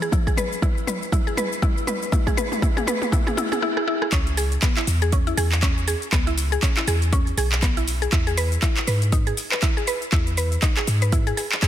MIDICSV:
0, 0, Header, 1, 4, 480
1, 0, Start_track
1, 0, Key_signature, 4, "minor"
1, 0, Tempo, 500000
1, 119, Time_signature, 4, 2, 24, 8
1, 11211, End_track
2, 0, Start_track
2, 0, Title_t, "Synth pluck"
2, 0, Program_c, 0, 84
2, 19, Note_on_c, 0, 68, 73
2, 114, Note_off_c, 0, 68, 0
2, 120, Note_on_c, 0, 64, 76
2, 252, Note_off_c, 0, 64, 0
2, 259, Note_on_c, 0, 68, 71
2, 313, Note_off_c, 0, 68, 0
2, 360, Note_on_c, 0, 71, 96
2, 485, Note_off_c, 0, 71, 0
2, 599, Note_on_c, 0, 64, 89
2, 725, Note_off_c, 0, 64, 0
2, 839, Note_on_c, 0, 71, 71
2, 965, Note_off_c, 0, 71, 0
2, 1079, Note_on_c, 0, 64, 79
2, 1212, Note_off_c, 0, 64, 0
2, 1219, Note_on_c, 0, 68, 72
2, 1273, Note_off_c, 0, 68, 0
2, 1319, Note_on_c, 0, 71, 101
2, 1445, Note_off_c, 0, 71, 0
2, 1558, Note_on_c, 0, 64, 96
2, 1684, Note_off_c, 0, 64, 0
2, 1798, Note_on_c, 0, 71, 75
2, 1924, Note_off_c, 0, 71, 0
2, 2038, Note_on_c, 0, 64, 81
2, 2171, Note_off_c, 0, 64, 0
2, 2179, Note_on_c, 0, 68, 78
2, 2233, Note_off_c, 0, 68, 0
2, 2279, Note_on_c, 0, 71, 101
2, 2405, Note_off_c, 0, 71, 0
2, 2518, Note_on_c, 0, 64, 80
2, 2652, Note_off_c, 0, 64, 0
2, 2659, Note_on_c, 0, 68, 76
2, 2713, Note_off_c, 0, 68, 0
2, 2760, Note_on_c, 0, 71, 103
2, 2885, Note_off_c, 0, 71, 0
2, 3000, Note_on_c, 0, 64, 84
2, 3132, Note_off_c, 0, 64, 0
2, 3141, Note_on_c, 0, 68, 79
2, 3194, Note_off_c, 0, 68, 0
2, 3240, Note_on_c, 0, 64, 85
2, 3372, Note_off_c, 0, 64, 0
2, 3379, Note_on_c, 0, 68, 80
2, 3433, Note_off_c, 0, 68, 0
2, 3480, Note_on_c, 0, 64, 85
2, 3612, Note_off_c, 0, 64, 0
2, 3619, Note_on_c, 0, 68, 81
2, 3673, Note_off_c, 0, 68, 0
2, 3720, Note_on_c, 0, 64, 88
2, 3852, Note_off_c, 0, 64, 0
2, 3859, Note_on_c, 0, 68, 79
2, 3913, Note_off_c, 0, 68, 0
2, 3959, Note_on_c, 0, 61, 100
2, 4085, Note_off_c, 0, 61, 0
2, 4199, Note_on_c, 0, 68, 77
2, 4325, Note_off_c, 0, 68, 0
2, 4438, Note_on_c, 0, 59, 81
2, 4514, Note_off_c, 0, 59, 0
2, 4578, Note_on_c, 0, 64, 77
2, 4633, Note_off_c, 0, 64, 0
2, 4819, Note_on_c, 0, 68, 80
2, 4914, Note_off_c, 0, 68, 0
2, 4920, Note_on_c, 0, 61, 83
2, 5052, Note_off_c, 0, 61, 0
2, 5059, Note_on_c, 0, 64, 77
2, 5113, Note_off_c, 0, 64, 0
2, 5159, Note_on_c, 0, 68, 106
2, 5285, Note_off_c, 0, 68, 0
2, 5399, Note_on_c, 0, 61, 104
2, 5525, Note_off_c, 0, 61, 0
2, 5641, Note_on_c, 0, 68, 76
2, 5766, Note_off_c, 0, 68, 0
2, 5880, Note_on_c, 0, 59, 80
2, 5955, Note_off_c, 0, 59, 0
2, 6019, Note_on_c, 0, 64, 77
2, 6073, Note_off_c, 0, 64, 0
2, 6260, Note_on_c, 0, 68, 79
2, 6355, Note_off_c, 0, 68, 0
2, 6360, Note_on_c, 0, 61, 84
2, 6492, Note_off_c, 0, 61, 0
2, 6501, Note_on_c, 0, 64, 77
2, 6554, Note_off_c, 0, 64, 0
2, 6602, Note_on_c, 0, 68, 103
2, 6726, Note_off_c, 0, 68, 0
2, 6840, Note_on_c, 0, 61, 102
2, 6965, Note_off_c, 0, 61, 0
2, 7081, Note_on_c, 0, 68, 79
2, 7206, Note_off_c, 0, 68, 0
2, 7320, Note_on_c, 0, 59, 80
2, 7395, Note_off_c, 0, 59, 0
2, 7460, Note_on_c, 0, 64, 77
2, 7514, Note_off_c, 0, 64, 0
2, 7698, Note_on_c, 0, 68, 75
2, 7794, Note_off_c, 0, 68, 0
2, 7800, Note_on_c, 0, 64, 81
2, 7932, Note_off_c, 0, 64, 0
2, 7939, Note_on_c, 0, 68, 80
2, 7993, Note_off_c, 0, 68, 0
2, 8040, Note_on_c, 0, 71, 103
2, 8165, Note_off_c, 0, 71, 0
2, 8280, Note_on_c, 0, 64, 100
2, 8405, Note_off_c, 0, 64, 0
2, 8521, Note_on_c, 0, 71, 78
2, 8646, Note_off_c, 0, 71, 0
2, 8759, Note_on_c, 0, 63, 83
2, 8834, Note_off_c, 0, 63, 0
2, 8898, Note_on_c, 0, 68, 77
2, 8953, Note_off_c, 0, 68, 0
2, 9139, Note_on_c, 0, 71, 77
2, 9234, Note_off_c, 0, 71, 0
2, 9239, Note_on_c, 0, 64, 84
2, 9372, Note_off_c, 0, 64, 0
2, 9379, Note_on_c, 0, 68, 78
2, 9433, Note_off_c, 0, 68, 0
2, 9480, Note_on_c, 0, 71, 101
2, 9605, Note_off_c, 0, 71, 0
2, 9720, Note_on_c, 0, 64, 103
2, 9845, Note_off_c, 0, 64, 0
2, 9960, Note_on_c, 0, 71, 80
2, 10085, Note_off_c, 0, 71, 0
2, 10199, Note_on_c, 0, 63, 82
2, 10274, Note_off_c, 0, 63, 0
2, 10339, Note_on_c, 0, 68, 76
2, 10393, Note_off_c, 0, 68, 0
2, 10580, Note_on_c, 0, 71, 79
2, 10674, Note_off_c, 0, 71, 0
2, 10680, Note_on_c, 0, 64, 84
2, 10812, Note_off_c, 0, 64, 0
2, 10818, Note_on_c, 0, 68, 77
2, 10872, Note_off_c, 0, 68, 0
2, 10917, Note_on_c, 0, 68, 77
2, 10994, Note_off_c, 0, 68, 0
2, 11159, Note_on_c, 0, 68, 82
2, 11211, Note_off_c, 0, 68, 0
2, 11211, End_track
3, 0, Start_track
3, 0, Title_t, "808-style bass"
3, 0, Program_c, 1, 38
3, 3959, Note_on_c, 1, 37, 99
3, 4387, Note_off_c, 1, 37, 0
3, 4679, Note_on_c, 1, 40, 83
3, 5107, Note_off_c, 1, 40, 0
3, 5159, Note_on_c, 1, 40, 90
3, 5707, Note_off_c, 1, 40, 0
3, 5881, Note_on_c, 1, 37, 101
3, 6308, Note_off_c, 1, 37, 0
3, 6599, Note_on_c, 1, 40, 83
3, 7028, Note_off_c, 1, 40, 0
3, 7079, Note_on_c, 1, 35, 81
3, 7748, Note_off_c, 1, 35, 0
3, 7800, Note_on_c, 1, 40, 97
3, 8228, Note_off_c, 1, 40, 0
3, 8520, Note_on_c, 1, 44, 85
3, 8948, Note_off_c, 1, 44, 0
3, 9720, Note_on_c, 1, 40, 101
3, 10148, Note_off_c, 1, 40, 0
3, 10440, Note_on_c, 1, 44, 87
3, 10868, Note_off_c, 1, 44, 0
3, 11211, End_track
4, 0, Start_track
4, 0, Title_t, "Drums"
4, 22, Note_on_c, 9, 82, 42
4, 116, Note_on_c, 9, 47, 72
4, 118, Note_off_c, 9, 82, 0
4, 119, Note_on_c, 9, 36, 127
4, 122, Note_on_c, 9, 82, 55
4, 212, Note_off_c, 9, 47, 0
4, 215, Note_off_c, 9, 36, 0
4, 218, Note_off_c, 9, 82, 0
4, 259, Note_on_c, 9, 36, 88
4, 263, Note_on_c, 9, 82, 27
4, 355, Note_off_c, 9, 36, 0
4, 357, Note_on_c, 9, 47, 78
4, 359, Note_off_c, 9, 82, 0
4, 363, Note_on_c, 9, 82, 97
4, 453, Note_off_c, 9, 47, 0
4, 459, Note_off_c, 9, 82, 0
4, 504, Note_on_c, 9, 82, 41
4, 598, Note_on_c, 9, 47, 81
4, 599, Note_on_c, 9, 36, 125
4, 600, Note_off_c, 9, 82, 0
4, 605, Note_on_c, 9, 82, 55
4, 694, Note_off_c, 9, 47, 0
4, 695, Note_off_c, 9, 36, 0
4, 701, Note_off_c, 9, 82, 0
4, 744, Note_on_c, 9, 82, 28
4, 838, Note_on_c, 9, 47, 82
4, 840, Note_off_c, 9, 82, 0
4, 844, Note_on_c, 9, 82, 98
4, 934, Note_off_c, 9, 47, 0
4, 940, Note_off_c, 9, 82, 0
4, 984, Note_on_c, 9, 82, 41
4, 1078, Note_on_c, 9, 47, 85
4, 1079, Note_on_c, 9, 36, 123
4, 1080, Note_off_c, 9, 82, 0
4, 1084, Note_on_c, 9, 82, 56
4, 1174, Note_off_c, 9, 47, 0
4, 1175, Note_off_c, 9, 36, 0
4, 1180, Note_off_c, 9, 82, 0
4, 1224, Note_on_c, 9, 82, 27
4, 1318, Note_on_c, 9, 47, 83
4, 1320, Note_off_c, 9, 82, 0
4, 1324, Note_on_c, 9, 82, 98
4, 1414, Note_off_c, 9, 47, 0
4, 1420, Note_off_c, 9, 82, 0
4, 1464, Note_on_c, 9, 82, 42
4, 1558, Note_on_c, 9, 47, 88
4, 1559, Note_on_c, 9, 36, 124
4, 1560, Note_off_c, 9, 82, 0
4, 1564, Note_on_c, 9, 82, 57
4, 1654, Note_off_c, 9, 47, 0
4, 1655, Note_off_c, 9, 36, 0
4, 1660, Note_off_c, 9, 82, 0
4, 1704, Note_on_c, 9, 82, 28
4, 1797, Note_on_c, 9, 47, 91
4, 1800, Note_off_c, 9, 82, 0
4, 1803, Note_on_c, 9, 82, 100
4, 1893, Note_off_c, 9, 47, 0
4, 1899, Note_off_c, 9, 82, 0
4, 1943, Note_on_c, 9, 82, 42
4, 2037, Note_on_c, 9, 47, 88
4, 2038, Note_on_c, 9, 36, 123
4, 2039, Note_off_c, 9, 82, 0
4, 2043, Note_on_c, 9, 82, 54
4, 2133, Note_off_c, 9, 47, 0
4, 2134, Note_off_c, 9, 36, 0
4, 2139, Note_off_c, 9, 82, 0
4, 2178, Note_on_c, 9, 36, 85
4, 2178, Note_on_c, 9, 47, 84
4, 2184, Note_on_c, 9, 82, 28
4, 2274, Note_off_c, 9, 36, 0
4, 2274, Note_off_c, 9, 47, 0
4, 2278, Note_on_c, 9, 47, 94
4, 2280, Note_off_c, 9, 82, 0
4, 2284, Note_on_c, 9, 82, 98
4, 2374, Note_off_c, 9, 47, 0
4, 2380, Note_off_c, 9, 82, 0
4, 2418, Note_on_c, 9, 47, 83
4, 2424, Note_on_c, 9, 82, 41
4, 2514, Note_off_c, 9, 47, 0
4, 2518, Note_on_c, 9, 36, 127
4, 2518, Note_on_c, 9, 47, 97
4, 2520, Note_off_c, 9, 82, 0
4, 2524, Note_on_c, 9, 82, 55
4, 2614, Note_off_c, 9, 36, 0
4, 2614, Note_off_c, 9, 47, 0
4, 2620, Note_off_c, 9, 82, 0
4, 2657, Note_on_c, 9, 47, 88
4, 2663, Note_on_c, 9, 82, 28
4, 2753, Note_off_c, 9, 47, 0
4, 2757, Note_on_c, 9, 47, 103
4, 2759, Note_off_c, 9, 82, 0
4, 2763, Note_on_c, 9, 82, 101
4, 2853, Note_off_c, 9, 47, 0
4, 2859, Note_off_c, 9, 82, 0
4, 2897, Note_on_c, 9, 47, 86
4, 2903, Note_on_c, 9, 82, 41
4, 2993, Note_off_c, 9, 47, 0
4, 2998, Note_on_c, 9, 36, 124
4, 2998, Note_on_c, 9, 47, 106
4, 2999, Note_off_c, 9, 82, 0
4, 3004, Note_on_c, 9, 82, 54
4, 3094, Note_off_c, 9, 36, 0
4, 3094, Note_off_c, 9, 47, 0
4, 3100, Note_off_c, 9, 82, 0
4, 3137, Note_on_c, 9, 47, 88
4, 3143, Note_on_c, 9, 82, 27
4, 3233, Note_off_c, 9, 47, 0
4, 3238, Note_on_c, 9, 47, 103
4, 3239, Note_off_c, 9, 82, 0
4, 3244, Note_on_c, 9, 82, 94
4, 3334, Note_off_c, 9, 47, 0
4, 3340, Note_off_c, 9, 82, 0
4, 3378, Note_on_c, 9, 47, 94
4, 3384, Note_on_c, 9, 82, 42
4, 3474, Note_off_c, 9, 47, 0
4, 3478, Note_on_c, 9, 37, 65
4, 3480, Note_off_c, 9, 82, 0
4, 3574, Note_off_c, 9, 37, 0
4, 3618, Note_on_c, 9, 37, 62
4, 3714, Note_off_c, 9, 37, 0
4, 3858, Note_on_c, 9, 37, 84
4, 3954, Note_off_c, 9, 37, 0
4, 3958, Note_on_c, 9, 39, 95
4, 3958, Note_on_c, 9, 42, 67
4, 3959, Note_on_c, 9, 36, 119
4, 3964, Note_on_c, 9, 82, 51
4, 4054, Note_off_c, 9, 39, 0
4, 4054, Note_off_c, 9, 42, 0
4, 4055, Note_off_c, 9, 36, 0
4, 4060, Note_off_c, 9, 82, 0
4, 4098, Note_on_c, 9, 42, 31
4, 4104, Note_on_c, 9, 82, 26
4, 4194, Note_off_c, 9, 42, 0
4, 4198, Note_on_c, 9, 46, 97
4, 4200, Note_off_c, 9, 82, 0
4, 4205, Note_on_c, 9, 82, 96
4, 4294, Note_off_c, 9, 46, 0
4, 4301, Note_off_c, 9, 82, 0
4, 4338, Note_on_c, 9, 42, 31
4, 4344, Note_on_c, 9, 82, 39
4, 4434, Note_off_c, 9, 42, 0
4, 4438, Note_on_c, 9, 39, 98
4, 4438, Note_on_c, 9, 42, 69
4, 4440, Note_off_c, 9, 82, 0
4, 4440, Note_on_c, 9, 36, 120
4, 4444, Note_on_c, 9, 82, 53
4, 4534, Note_off_c, 9, 39, 0
4, 4534, Note_off_c, 9, 42, 0
4, 4536, Note_off_c, 9, 36, 0
4, 4540, Note_off_c, 9, 82, 0
4, 4579, Note_on_c, 9, 39, 86
4, 4579, Note_on_c, 9, 42, 45
4, 4585, Note_on_c, 9, 82, 27
4, 4675, Note_off_c, 9, 39, 0
4, 4675, Note_off_c, 9, 42, 0
4, 4678, Note_on_c, 9, 46, 94
4, 4681, Note_off_c, 9, 82, 0
4, 4684, Note_on_c, 9, 82, 97
4, 4774, Note_off_c, 9, 46, 0
4, 4780, Note_off_c, 9, 82, 0
4, 4818, Note_on_c, 9, 42, 44
4, 4824, Note_on_c, 9, 82, 40
4, 4914, Note_off_c, 9, 42, 0
4, 4919, Note_on_c, 9, 42, 67
4, 4920, Note_off_c, 9, 82, 0
4, 4920, Note_on_c, 9, 36, 117
4, 4925, Note_on_c, 9, 82, 54
4, 5015, Note_off_c, 9, 42, 0
4, 5016, Note_off_c, 9, 36, 0
4, 5021, Note_off_c, 9, 82, 0
4, 5060, Note_on_c, 9, 42, 31
4, 5066, Note_on_c, 9, 82, 26
4, 5156, Note_off_c, 9, 42, 0
4, 5160, Note_on_c, 9, 46, 92
4, 5162, Note_off_c, 9, 82, 0
4, 5166, Note_on_c, 9, 82, 91
4, 5256, Note_off_c, 9, 46, 0
4, 5262, Note_off_c, 9, 82, 0
4, 5299, Note_on_c, 9, 39, 97
4, 5305, Note_on_c, 9, 82, 40
4, 5395, Note_off_c, 9, 39, 0
4, 5400, Note_on_c, 9, 36, 119
4, 5401, Note_off_c, 9, 82, 0
4, 5401, Note_on_c, 9, 39, 99
4, 5401, Note_on_c, 9, 42, 69
4, 5407, Note_on_c, 9, 82, 53
4, 5496, Note_off_c, 9, 36, 0
4, 5497, Note_off_c, 9, 39, 0
4, 5497, Note_off_c, 9, 42, 0
4, 5503, Note_off_c, 9, 82, 0
4, 5546, Note_on_c, 9, 82, 26
4, 5640, Note_on_c, 9, 46, 94
4, 5642, Note_off_c, 9, 82, 0
4, 5646, Note_on_c, 9, 82, 95
4, 5736, Note_off_c, 9, 46, 0
4, 5742, Note_off_c, 9, 82, 0
4, 5780, Note_on_c, 9, 42, 31
4, 5786, Note_on_c, 9, 82, 39
4, 5876, Note_off_c, 9, 42, 0
4, 5880, Note_on_c, 9, 39, 93
4, 5880, Note_on_c, 9, 42, 64
4, 5881, Note_on_c, 9, 36, 127
4, 5882, Note_off_c, 9, 82, 0
4, 5886, Note_on_c, 9, 82, 54
4, 5976, Note_off_c, 9, 39, 0
4, 5976, Note_off_c, 9, 42, 0
4, 5977, Note_off_c, 9, 36, 0
4, 5982, Note_off_c, 9, 82, 0
4, 6021, Note_on_c, 9, 42, 31
4, 6027, Note_on_c, 9, 82, 28
4, 6117, Note_off_c, 9, 42, 0
4, 6120, Note_on_c, 9, 46, 95
4, 6123, Note_off_c, 9, 82, 0
4, 6126, Note_on_c, 9, 82, 99
4, 6216, Note_off_c, 9, 46, 0
4, 6222, Note_off_c, 9, 82, 0
4, 6261, Note_on_c, 9, 42, 31
4, 6267, Note_on_c, 9, 82, 42
4, 6357, Note_off_c, 9, 42, 0
4, 6361, Note_on_c, 9, 36, 124
4, 6361, Note_on_c, 9, 39, 96
4, 6361, Note_on_c, 9, 42, 68
4, 6363, Note_off_c, 9, 82, 0
4, 6367, Note_on_c, 9, 82, 56
4, 6457, Note_off_c, 9, 36, 0
4, 6457, Note_off_c, 9, 39, 0
4, 6457, Note_off_c, 9, 42, 0
4, 6463, Note_off_c, 9, 82, 0
4, 6500, Note_on_c, 9, 39, 86
4, 6500, Note_on_c, 9, 42, 46
4, 6506, Note_on_c, 9, 82, 28
4, 6596, Note_off_c, 9, 39, 0
4, 6596, Note_off_c, 9, 42, 0
4, 6600, Note_on_c, 9, 46, 95
4, 6602, Note_off_c, 9, 82, 0
4, 6605, Note_on_c, 9, 82, 98
4, 6696, Note_off_c, 9, 46, 0
4, 6701, Note_off_c, 9, 82, 0
4, 6740, Note_on_c, 9, 42, 43
4, 6746, Note_on_c, 9, 82, 40
4, 6836, Note_off_c, 9, 42, 0
4, 6841, Note_on_c, 9, 36, 118
4, 6841, Note_on_c, 9, 42, 67
4, 6842, Note_off_c, 9, 82, 0
4, 6847, Note_on_c, 9, 82, 57
4, 6937, Note_off_c, 9, 36, 0
4, 6937, Note_off_c, 9, 42, 0
4, 6943, Note_off_c, 9, 82, 0
4, 6980, Note_on_c, 9, 42, 30
4, 6986, Note_on_c, 9, 82, 27
4, 7076, Note_off_c, 9, 42, 0
4, 7080, Note_on_c, 9, 46, 91
4, 7082, Note_off_c, 9, 82, 0
4, 7086, Note_on_c, 9, 82, 95
4, 7176, Note_off_c, 9, 46, 0
4, 7182, Note_off_c, 9, 82, 0
4, 7220, Note_on_c, 9, 39, 99
4, 7226, Note_on_c, 9, 82, 41
4, 7316, Note_off_c, 9, 39, 0
4, 7320, Note_on_c, 9, 36, 125
4, 7320, Note_on_c, 9, 39, 97
4, 7320, Note_on_c, 9, 42, 68
4, 7322, Note_off_c, 9, 82, 0
4, 7327, Note_on_c, 9, 82, 58
4, 7416, Note_off_c, 9, 36, 0
4, 7416, Note_off_c, 9, 39, 0
4, 7416, Note_off_c, 9, 42, 0
4, 7423, Note_off_c, 9, 82, 0
4, 7460, Note_on_c, 9, 42, 30
4, 7466, Note_on_c, 9, 82, 28
4, 7556, Note_off_c, 9, 42, 0
4, 7560, Note_on_c, 9, 46, 91
4, 7562, Note_off_c, 9, 82, 0
4, 7566, Note_on_c, 9, 82, 97
4, 7656, Note_off_c, 9, 46, 0
4, 7662, Note_off_c, 9, 82, 0
4, 7699, Note_on_c, 9, 42, 31
4, 7705, Note_on_c, 9, 82, 40
4, 7795, Note_off_c, 9, 42, 0
4, 7799, Note_on_c, 9, 39, 95
4, 7799, Note_on_c, 9, 42, 63
4, 7800, Note_on_c, 9, 36, 126
4, 7801, Note_off_c, 9, 82, 0
4, 7805, Note_on_c, 9, 82, 54
4, 7895, Note_off_c, 9, 39, 0
4, 7895, Note_off_c, 9, 42, 0
4, 7896, Note_off_c, 9, 36, 0
4, 7901, Note_off_c, 9, 82, 0
4, 7940, Note_on_c, 9, 42, 30
4, 7946, Note_on_c, 9, 82, 28
4, 8036, Note_off_c, 9, 42, 0
4, 8039, Note_on_c, 9, 46, 92
4, 8042, Note_off_c, 9, 82, 0
4, 8045, Note_on_c, 9, 82, 100
4, 8135, Note_off_c, 9, 46, 0
4, 8141, Note_off_c, 9, 82, 0
4, 8179, Note_on_c, 9, 42, 30
4, 8185, Note_on_c, 9, 82, 41
4, 8275, Note_off_c, 9, 42, 0
4, 8279, Note_on_c, 9, 36, 127
4, 8279, Note_on_c, 9, 39, 101
4, 8279, Note_on_c, 9, 42, 66
4, 8281, Note_off_c, 9, 82, 0
4, 8285, Note_on_c, 9, 82, 58
4, 8375, Note_off_c, 9, 36, 0
4, 8375, Note_off_c, 9, 39, 0
4, 8375, Note_off_c, 9, 42, 0
4, 8381, Note_off_c, 9, 82, 0
4, 8419, Note_on_c, 9, 39, 84
4, 8419, Note_on_c, 9, 42, 45
4, 8425, Note_on_c, 9, 82, 29
4, 8515, Note_off_c, 9, 39, 0
4, 8515, Note_off_c, 9, 42, 0
4, 8519, Note_on_c, 9, 46, 90
4, 8521, Note_off_c, 9, 82, 0
4, 8525, Note_on_c, 9, 82, 101
4, 8615, Note_off_c, 9, 46, 0
4, 8621, Note_off_c, 9, 82, 0
4, 8659, Note_on_c, 9, 42, 43
4, 8665, Note_on_c, 9, 82, 42
4, 8755, Note_off_c, 9, 42, 0
4, 8759, Note_on_c, 9, 36, 124
4, 8759, Note_on_c, 9, 42, 65
4, 8761, Note_off_c, 9, 82, 0
4, 8765, Note_on_c, 9, 82, 56
4, 8855, Note_off_c, 9, 36, 0
4, 8855, Note_off_c, 9, 42, 0
4, 8861, Note_off_c, 9, 82, 0
4, 8898, Note_on_c, 9, 42, 30
4, 8904, Note_on_c, 9, 82, 27
4, 8994, Note_off_c, 9, 42, 0
4, 8998, Note_on_c, 9, 46, 86
4, 9000, Note_off_c, 9, 82, 0
4, 9004, Note_on_c, 9, 82, 96
4, 9094, Note_off_c, 9, 46, 0
4, 9100, Note_off_c, 9, 82, 0
4, 9138, Note_on_c, 9, 39, 94
4, 9144, Note_on_c, 9, 82, 42
4, 9234, Note_off_c, 9, 39, 0
4, 9238, Note_on_c, 9, 39, 102
4, 9238, Note_on_c, 9, 42, 67
4, 9240, Note_off_c, 9, 82, 0
4, 9240, Note_on_c, 9, 36, 123
4, 9244, Note_on_c, 9, 82, 55
4, 9334, Note_off_c, 9, 39, 0
4, 9334, Note_off_c, 9, 42, 0
4, 9336, Note_off_c, 9, 36, 0
4, 9340, Note_off_c, 9, 82, 0
4, 9384, Note_on_c, 9, 82, 28
4, 9478, Note_on_c, 9, 46, 89
4, 9480, Note_off_c, 9, 82, 0
4, 9484, Note_on_c, 9, 82, 96
4, 9574, Note_off_c, 9, 46, 0
4, 9580, Note_off_c, 9, 82, 0
4, 9618, Note_on_c, 9, 42, 30
4, 9624, Note_on_c, 9, 82, 42
4, 9714, Note_off_c, 9, 42, 0
4, 9718, Note_on_c, 9, 39, 91
4, 9718, Note_on_c, 9, 42, 62
4, 9720, Note_off_c, 9, 82, 0
4, 9720, Note_on_c, 9, 36, 127
4, 9724, Note_on_c, 9, 82, 53
4, 9814, Note_off_c, 9, 39, 0
4, 9814, Note_off_c, 9, 42, 0
4, 9816, Note_off_c, 9, 36, 0
4, 9820, Note_off_c, 9, 82, 0
4, 9859, Note_on_c, 9, 42, 32
4, 9865, Note_on_c, 9, 82, 29
4, 9955, Note_off_c, 9, 42, 0
4, 9958, Note_on_c, 9, 46, 88
4, 9961, Note_off_c, 9, 82, 0
4, 9964, Note_on_c, 9, 82, 95
4, 10054, Note_off_c, 9, 46, 0
4, 10060, Note_off_c, 9, 82, 0
4, 10098, Note_on_c, 9, 42, 30
4, 10104, Note_on_c, 9, 82, 42
4, 10194, Note_off_c, 9, 42, 0
4, 10199, Note_on_c, 9, 39, 103
4, 10199, Note_on_c, 9, 42, 67
4, 10200, Note_off_c, 9, 82, 0
4, 10200, Note_on_c, 9, 36, 127
4, 10205, Note_on_c, 9, 82, 56
4, 10295, Note_off_c, 9, 39, 0
4, 10295, Note_off_c, 9, 42, 0
4, 10296, Note_off_c, 9, 36, 0
4, 10301, Note_off_c, 9, 82, 0
4, 10339, Note_on_c, 9, 39, 82
4, 10339, Note_on_c, 9, 42, 45
4, 10345, Note_on_c, 9, 82, 29
4, 10435, Note_off_c, 9, 39, 0
4, 10435, Note_off_c, 9, 42, 0
4, 10439, Note_on_c, 9, 46, 89
4, 10441, Note_off_c, 9, 82, 0
4, 10445, Note_on_c, 9, 82, 98
4, 10535, Note_off_c, 9, 46, 0
4, 10541, Note_off_c, 9, 82, 0
4, 10578, Note_on_c, 9, 42, 44
4, 10584, Note_on_c, 9, 82, 41
4, 10674, Note_off_c, 9, 42, 0
4, 10679, Note_on_c, 9, 42, 65
4, 10680, Note_off_c, 9, 82, 0
4, 10680, Note_on_c, 9, 36, 122
4, 10685, Note_on_c, 9, 82, 56
4, 10775, Note_off_c, 9, 42, 0
4, 10776, Note_off_c, 9, 36, 0
4, 10781, Note_off_c, 9, 82, 0
4, 10819, Note_on_c, 9, 42, 31
4, 10825, Note_on_c, 9, 82, 27
4, 10915, Note_off_c, 9, 42, 0
4, 10919, Note_on_c, 9, 46, 86
4, 10921, Note_off_c, 9, 82, 0
4, 10925, Note_on_c, 9, 82, 92
4, 11015, Note_off_c, 9, 46, 0
4, 11021, Note_off_c, 9, 82, 0
4, 11059, Note_on_c, 9, 39, 93
4, 11065, Note_on_c, 9, 82, 40
4, 11155, Note_off_c, 9, 39, 0
4, 11160, Note_on_c, 9, 36, 123
4, 11160, Note_on_c, 9, 39, 107
4, 11160, Note_on_c, 9, 42, 66
4, 11161, Note_off_c, 9, 82, 0
4, 11166, Note_on_c, 9, 82, 55
4, 11211, Note_off_c, 9, 36, 0
4, 11211, Note_off_c, 9, 39, 0
4, 11211, Note_off_c, 9, 42, 0
4, 11211, Note_off_c, 9, 82, 0
4, 11211, End_track
0, 0, End_of_file